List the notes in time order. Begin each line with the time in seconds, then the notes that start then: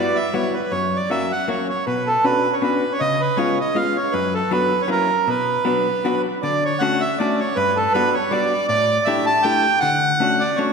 Already playing: G3 B3 E4 F#4 D5
0.15 E5
0.33 G3 B3 E4 F#4 C#5
0.54 B4
0.71 F#2 C#5
0.96 D5
1.10 F#3 A#3 C#4 F#4 E5
1.32 F#5
1.48 F#3 A#3 C#4 F#4 C#5
1.69 C#5
1.87 B2 B4
2.07 A4
2.24 B3 C#4 D4 F#4 B4
2.53 C#5
2.62 B3 C#4 D4 F#4 B4
2.92 C#5
3.00 C#3 D#5
3.21 B4
3.36 G#3 B3 C#4 F4 C#5
3.60 D#5
3.75 G#3 B3 C#4 F4 F5
3.96 C#5
4.12 F#2 B4
4.34 A4
4.51 F#3 B3 D4 F#4 B4
4.81 C#5
4.88 F#3 A#3 C#4 E4 A#4
5.27 B2 B4
5.65 F#3 B3 D4 F#4
6.04 F#3 B3 D4 F#4
6.42 D3 D5
6.65 C#5
6.79 A3 C#4 D4 F#4 F#5
7.00 E5
7.18 A3 C#4 D4 F#4 D5
7.40 C#5
7.56 G2 B4
7.76 A4
7.93 G3 B3 D4 F#4 B4
8.14 C#5
8.31 G3 B3 D4 F#4 D5
8.68 A2 D5
9.05 A3 D4 E4 G4 E5
9.26 A5
9.43 A3 D4 E4 G4 G5
9.80 D3 F#5
10.20 A3 C#4 D4 F#4
10.40 D5
10.56 A3 C#4 D4 F#4 C#5